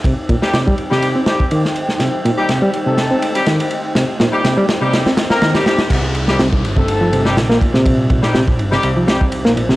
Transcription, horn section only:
0.42 G3 C4 D#4 G4
0.91 G3 C4 D#4 G4
1.27 G3 C4 D#4 G4
2.37 G3 C4 D#4 G4
2.86 A3 C4 D#4 A4
3.35 G3 C4 D#4 G4
4.33 G3 C4 D#4 G4
4.81 G3 C4 D#4 G4
5.30 A#3 C4 D#4 A#4
5.55 G3 C4 D#4 G4
5.66 G3 C4 D#4 G4
6.28 G3 C4 D#4 G4
6.76 A3 C4 D#4 A4
7.25 G3 C4 D#4 G4
8.23 G3 C4 D#4 G4
8.72 G3 C4 D#4 G4
9.08 G3 C4 D#4 G4

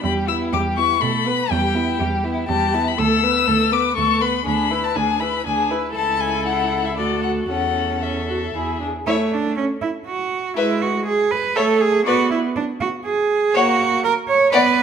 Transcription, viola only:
0.03 G3
0.28 B3
0.53 G3
0.77 B3
1.01 A3
1.25 B3
1.50 G3
1.75 B3
1.99 G3
2.24 B3
2.49 G3
2.74 B3
2.99 A3
3.24 B3
3.47 A3
3.72 B3
3.96 A3
4.21 B3
4.46 D4
4.71 E4
4.96 D4
5.20 E4
5.46 D4
5.71 E4
5.96 E4
6.97 F#4
7.50 C#4
8.02 C#4
8.29 F#4
8.54 E4
8.80 D4
9.06 A3
10.57 G#3
11.56 A3
12.06 B3
13.55 A#3
14.52 B3

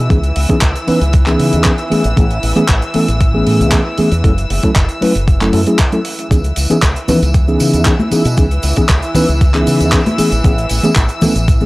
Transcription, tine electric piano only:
0.09 E3 B3 C#4 D#4 G#4
0.49 E3 B3 C#4 D#4 G#4
0.87 E3 B3 C#4 D#4 B4
1.26 E3 B3 C#4 D#4 G#4
1.65 E3 B3 C#4 D#4 G#4
1.90 E3 A3 B3 C#4 G#4
2.16 E3 A3 B3 C#4 G#4
2.56 E3 A3 B3 C#4 G#4
2.94 E3 A3 B3 C#4 A4
3.34 E3 A3 B3 C#4 G#4
3.72 E3 A3 B3 C#4 G#4
3.98 E3 A3 B3 C#4 G#4
4.24 F#3 A3 C#4 E4 A4
4.63 F#3 A3 C#4 E4 A4
5.01 F#3 A3 C#4 E4 B4
5.41 F#3 A3 C#4 E4 A4
5.53 F#3 A3 C#4 E4 A4
5.66 F#3 A3 C#4 E4 G#4
5.92 F#3 A3 C#4 E4 A4
6.30 E3 B3 C#4 D#4 G#4
6.70 E3 B3 C#4 D#4 G#4
7.08 E3 B3 C#4 D#4 B4
7.47 E3 B3 C#4 D#4 G#4
7.86 E3 B3 C#4 D#4 G#4
8.11 E3 B3 C#4 D#4 G#4
8.37 E3 B3 C#4 D#4 G#4
8.77 E3 B3 C#4 D#4 G#4
9.15 E3 B3 C#4 D#4 B4
9.54 E3 B3 C#4 D#4 G#4
9.92 E3 B3 C#4 D#4 G#4
10.18 E3 A3 B3 C#4 G#4
10.44 E3 A3 B3 C#4 G#4
10.83 E3 A3 B3 C#4 G#4
11.21 E3 A3 B3 C#4 A4
11.61 E3 A3 B3 C#4 G#4

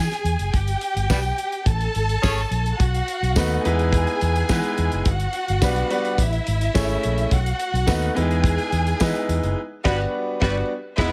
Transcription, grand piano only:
3.36 A3 B3 D#4 F#4 B4
3.64 G#3 B3 D#4 E4 B4
4.49 G#3 B3 D#4 E4 B4
5.62 G3 B3 D4 F#4 B4
5.89 G3 B3 D4 F#4 B4
6.74 A3 C#4 E4 G#4 C#5
7.87 A3 B3 D#4 F#4 B4
8.14 G#3 B3 D#4 E4 B4
9.00 G#3 B3 D#4 E4 B4
9.84 G3 B3 D4 F#4 B4
10.41 G3 B3 D4 F#4 B4
10.98 G#3 B3 D#4 E4 B4

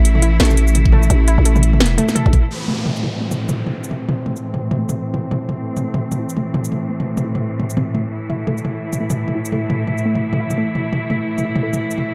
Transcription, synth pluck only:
0.22 E4
0.40 A3
0.93 A3
1.28 E4
1.45 A3
1.98 A3
2.15 A4
2.68 A3
3.03 E4
3.21 A3
3.73 A3
4.08 E4
4.26 A3
4.79 A3
5.14 E4
5.31 A3
5.84 A3
6.19 E4
6.36 A3
6.89 A3
7.24 E4
7.42 A3
7.59 A3
7.77 C4
7.95 A3
8.30 E4
8.47 A3
9.00 A3
9.35 E4
9.52 A3
10.05 A3
10.40 E4
10.58 A3
11.10 A3
11.45 E4
11.63 A3

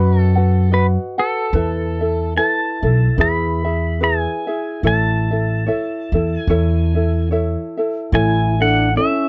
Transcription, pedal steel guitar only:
Already playing: B4
0.20 A4
0.74 B4
1.19 A4
2.38 A5
3.21 B5
4.04 G#5
4.87 A5
6.39 G#5
8.15 G#5
8.62 F#5
8.97 E5

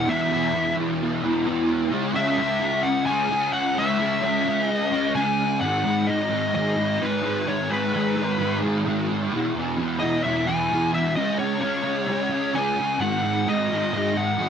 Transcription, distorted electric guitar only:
0.07 E2 B2 E3
0.30 B2 E3
0.54 E2 B2 E3
0.76 B2 E3
1.23 B2 E3
1.45 E2 B2 E3
1.91 C#3 G#3 C#4
2.14 G#3 C#4
2.37 C#3 G#3 C#4
2.60 G#3 C#4
3.07 G#3 C#4
3.29 C#3 G#3 C#4
3.75 C#3 G#3 C#4
3.98 G#3 C#4
4.21 C#3 G#3 C#4
4.45 G#3 C#4
4.91 G#3 C#4
5.14 C#3 G#3 C#4
5.61 G#2 D#3 G#3
5.83 D#3 G#3
6.07 G#2 D#3 G#3
6.29 D#3 G#3
6.53 G#2 D#3 G#3
6.76 D#3 G#3
6.99 G#2 D#3 G#3
7.22 D#3 G#3
7.46 G#2 D#3 G#3
7.69 D#3 G#3
7.93 G#2 D#3 G#3
8.16 D#3 G#3
8.39 G#2 D#3 G#3
8.62 D#3 G#3
8.85 G#2 D#3 G#3
9.08 D#3 G#3
9.31 E2 B2 E3
9.55 B2 E3
9.77 E2 B2 E3
9.99 B2 E3
10.24 E2 B2 E3
10.46 B2 E3
10.70 E2 B2 E3
10.92 B2 E3
11.16 C#3 G#3 C#4
11.39 G#3 C#4
11.61 C#3 G#3 C#4
11.84 G#3 C#4
12.07 C#3 G#3 C#4
12.30 G#3 C#4
12.53 C#3 G#3 C#4
12.76 G#3 C#4
12.98 G#2 D#3 G#3
13.22 D#3 G#3
13.46 G#2 D#3 G#3
13.69 D#3 G#3
13.93 G#2 D#3 G#3
14.16 D#3 G#3
14.39 G#2 D#3 G#3

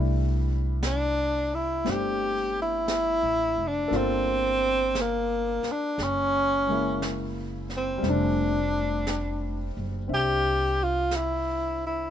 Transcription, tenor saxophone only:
0.86 D4
1.55 E4
1.90 G4
2.62 E4
3.67 D4
3.97 C4
5.01 A#3
5.72 D4
6.03 C#4
7.77 C4
8.10 D4
10.14 G4
10.83 F4
11.16 E4
11.87 E4

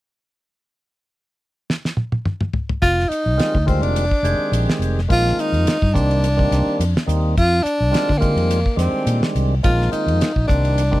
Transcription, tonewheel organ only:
3.37 D#3 G3 G#3 C4 F4
3.66 D#3 G3 G#3 C4 F4
4.24 D#3 G#3 C4 G4 G#4
5.08 D#3 G#3 A#3 C4 F4
5.94 D#3 G3 A#3 C4 D4
6.37 D#3 G3 A#3 C4 D4
7.06 D#3 G3 A#3 C4 D#4
7.91 D#3 G3 G#3 C4 F4
8.20 D#3 G3 G#3 C4 F4
8.76 D#3 G3 G#3 C4 D4
9.63 D#3 G#3 A#3 C4 F4
10.47 D#3 G3 A#3 C4 D4
10.91 D#3 G3 A#3 C4 D4

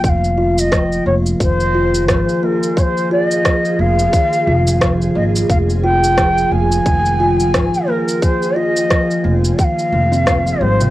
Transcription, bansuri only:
0.04 G5
0.09 F5
0.59 D#5
1.07 C#5
1.42 C5
2.10 C5
2.44 A#4
2.78 C5 C#5
3.12 D5
3.25 D#5
3.80 F5
5.16 D#5
5.50 F5
5.83 G5
6.51 G#5
7.89 A#4
8.22 C5
8.56 D#5
9.59 G5
9.64 F5
10.61 C5

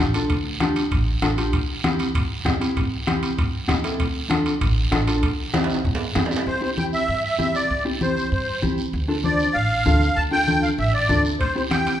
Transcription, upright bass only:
0.00 A1
0.30 D2
0.91 A1
1.22 A1
1.53 C2
2.15 G2
2.46 G2
2.77 C2
3.38 G2
3.69 C2
4.00 D2
4.61 A1
4.92 A1
5.23 C2
5.85 G2
6.16 G2
6.47 C2
7.08 G2
7.39 C2
7.70 C2
8.32 G2
8.63 C2
8.93 D2
9.55 A1
9.86 D2
10.17 D2
10.78 A1
11.09 D2
11.40 C2

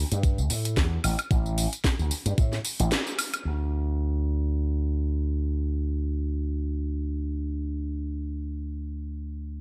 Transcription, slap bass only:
0.12 G2
0.38 D2
0.51 A2
0.77 E2
1.04 A1
1.31 A1
1.99 D2
2.11 muted slap bass stroke
2.26 G2
2.38 A2
2.80 A1
3.45 D2

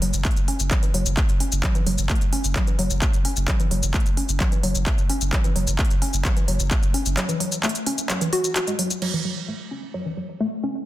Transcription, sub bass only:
0.02 F#1
0.14 F#1
0.37 F#1
0.60 F#1
0.94 F#1
1.06 F#1
1.29 F#1
1.52 F#1
1.87 F#1
1.98 F#1
2.21 F#1
2.44 F#1
2.79 F#1
2.90 F#1
3.14 F#1
3.37 F#1
3.71 F#1
3.83 F#1
4.06 F#1
4.29 F#1
4.63 F#1
4.75 F#1
4.98 F#1
5.21 F#1
5.56 F#1
5.67 F#1
5.90 F#1
6.14 F#1
6.48 F#1
6.60 F#1
6.83 F#1
7.06 F#1

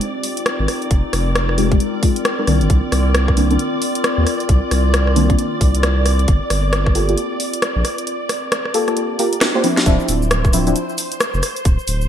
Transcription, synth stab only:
1.58 G#3 D#4 F4 G4
1.72 G#3 D#4 F4 G4
2.03 G#3 D#4 F4 G#4
2.39 G#3 D#4 F4 A#4
2.48 D#3 A#3 C4 D4
3.37 D#3 A#3 C4 D4
3.51 D#3 A#3 C4 D4
5.16 D#3 A#3 C4 D4
5.30 D#3 A#3 C4 D4
6.95 A#3 F4 G4 A4
7.09 A#3 F4 G4 A4
8.74 A#3 F4 G4 A4
8.88 A#3 F4 G4 A4
9.19 A#3 F4 G4 A#4
9.55 A#3 F4 G4 C5
9.64 F3 C4 D4 E4
9.86 F3 C4 D4 E4
10.53 F3 C4 D4 E4
10.67 F3 C4 D4 E4

